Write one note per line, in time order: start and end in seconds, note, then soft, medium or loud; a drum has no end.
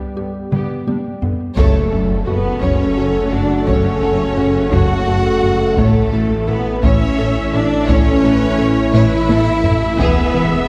0.00 1.58 G3 medium
0.00 1.54 B3 medium
0.00 1.58 G4 medium
0.00 1.58 D5 medium
0.17 0.25 G2 soft
0.17 0.25 D3 soft
0.17 0.25 B3 soft
0.17 0.38 G4 soft
0.52 0.60 G2 soft
0.52 0.73 G3 medium
0.52 0.85 B3 soft
0.52 0.85 G4 soft
0.52 taiko mid medium
0.87 0.95 G2 soft
0.87 0.95 G3 soft
0.87 0.95 D4 soft
0.87 1.08 G4 soft
0.87 taiko high medium
1.22 1.30 G2 soft
1.22 1.30 D3 soft
1.22 1.43 B3 soft
1.22 1.31 B3 soft
1.22 taiko low medium
1.56 1.89 F#1 medium
1.56 5.79 F#1 medium
1.56 1.78 F#2 loud
1.56 5.74 C#3 medium
1.56 1.78 F#3 medium
1.56 2.23 A3 medium
1.56 5.74 A3 medium
1.56 5.74 F#4 medium
1.56 2.23 A4 medium
1.56 5.74 A4 medium
1.56 1.89 C#5 medium
1.56 taiko medium
1.56 impact medium
1.91 2.01 F#1 soft
1.91 2.14 F#3 medium
1.91 2.13 C#4 soft
1.91 1.99 A4 soft
2.26 2.36 F#1 soft
2.26 2.49 F#2 medium
2.26 2.62 B3 medium
2.26 2.34 F#4 soft
2.26 2.48 F#4 medium
2.26 2.62 B4 medium
2.61 2.70 F#1 medium
2.61 2.84 F#2 medium
2.61 2.84 F#3 medium
2.61 3.30 C#4 medium
2.61 3.32 C#4 medium
2.61 4.69 A4 medium
2.61 2.95 C#5 medium
2.61 3.32 C#5 medium
2.61 taiko medium
2.96 3.06 F#1 soft
2.96 3.19 F#2 medium
2.96 3.19 F#4 medium
2.96 3.04 A4 soft
3.31 3.41 F#1 soft
3.31 3.54 F#2 medium
3.31 3.67 D4 medium
3.31 3.68 D4 medium
3.31 3.39 F#4 medium
3.31 3.53 F#4 medium
3.31 3.68 D5 medium
3.67 3.77 F#1 medium
3.67 3.89 F#2 medium
3.67 3.88 F#3 medium
3.67 4.72 C#4 medium
3.67 4.71 C#4 medium
3.67 4.00 C#5 medium
3.67 4.73 C#5 medium
3.67 taiko medium
4.02 4.11 F#1 soft
4.02 4.24 F#3 medium
4.02 4.24 C#4 medium
4.02 4.10 A4 soft
4.37 4.46 F#1 soft
4.37 4.59 F#2 medium
4.37 4.59 F#4 medium
4.37 4.46 F#4 soft
4.71 4.81 F#1 medium
4.71 4.94 F#2 medium
4.71 4.94 F#3 medium
4.71 5.77 F#4 medium
4.71 5.78 F#4 medium
4.71 6.83 A4 medium
4.71 5.05 C#5 medium
4.71 5.78 F#5 medium
4.71 taiko medium
5.07 5.15 F#1 soft
5.07 5.29 F#2 medium
5.07 5.29 F#4 medium
5.07 5.15 A4 medium
5.42 5.50 F#1 soft
5.42 5.64 F#2 medium
5.42 5.50 F#4 soft
5.42 5.64 F#4 medium
5.76 5.86 A1 medium
5.76 10.01 A1 medium
5.76 5.99 A2 medium
5.76 9.81 E3 medium
5.76 9.99 E3 medium
5.76 6.47 A3 medium
5.76 5.99 A3 medium
5.76 6.47 A3 medium
5.76 9.96 A3 medium
5.76 9.81 E4 medium
5.76 9.99 E4 medium
5.76 6.47 A4 medium
5.76 9.95 A4 medium
5.76 6.10 C#5 medium
5.76 taiko medium
6.12 6.22 A1 soft
6.12 6.34 A3 medium
6.12 6.34 E4 medium
6.12 6.20 A4 soft
6.48 6.56 A1 medium
6.48 6.70 A2 medium
6.48 6.83 B3 medium
6.48 6.84 B3 medium
6.48 6.56 E4 soft
6.48 6.69 A4 medium
6.48 6.84 B4 medium
6.83 6.91 A1 medium
6.83 7.05 A2 medium
6.83 7.04 A3 medium
6.83 7.53 C#4 medium
6.83 7.52 C#4 medium
6.83 7.16 C#5 medium
6.83 7.52 C#5 medium
6.83 7.87 E5 medium
6.83 taiko medium
7.18 7.26 A1 medium
7.18 7.40 A2 medium
7.18 7.26 A4 medium
7.18 7.40 A4 medium
7.53 7.61 A1 medium
7.53 7.75 A2 medium
7.53 7.89 D4 medium
7.53 7.61 E4 medium
7.53 7.75 A4 medium
7.53 7.88 D5 medium
7.88 7.97 A1 medium
7.88 8.10 A2 medium
7.88 8.10 A3 medium
7.88 8.92 C#4 loud
7.88 8.94 C#4 medium
7.88 8.23 A4 medium
7.88 8.94 C#5 medium
7.88 8.21 C#5 medium
7.88 taiko medium
8.23 8.32 A1 medium
8.23 8.45 A3 medium
8.23 8.45 E4 medium
8.23 8.32 A4 medium
8.23 8.58 B4 medium
8.58 8.68 A1 medium
8.58 8.79 A2 medium
8.58 8.67 E4 medium
8.58 8.80 A4 medium
8.58 8.94 C#5 medium
8.93 9.02 A1 medium
8.93 9.15 A2 medium
8.93 9.15 A3 medium
8.93 9.99 E4 medium
8.93 9.29 B4 medium
8.93 9.27 C#5 medium
8.93 9.99 E5 medium
8.93 taiko low-mid medium
9.29 9.38 A1 medium
9.29 9.50 A2 medium
9.29 9.50 A4 medium
9.29 9.64 A4 medium
9.29 9.38 A4 medium
9.29 taiko high medium
9.64 9.73 A1 medium
9.64 9.85 A2 medium
9.64 9.73 E4 medium
9.64 9.85 A4 medium
9.64 10.68 E5 medium
9.64 taiko low loud
9.98 10.68 E1 medium
9.98 10.07 E1 medium
9.98 10.20 E2 loud
9.98 10.68 E3 medium
9.98 10.21 E3 medium
9.98 10.68 E3 medium
9.98 10.68 G#3 medium
9.98 10.68 B3 loud
9.98 10.52 B3 loud
9.98 10.68 B3 medium
9.98 10.68 E4 medium
9.98 10.32 G#4 medium
9.98 10.68 G#4 medium
9.98 10.68 B4 medium
9.98 taiko medium
10.34 10.43 E1 medium
10.34 10.55 E3 medium
10.34 10.56 B3 medium
10.34 10.42 E4 medium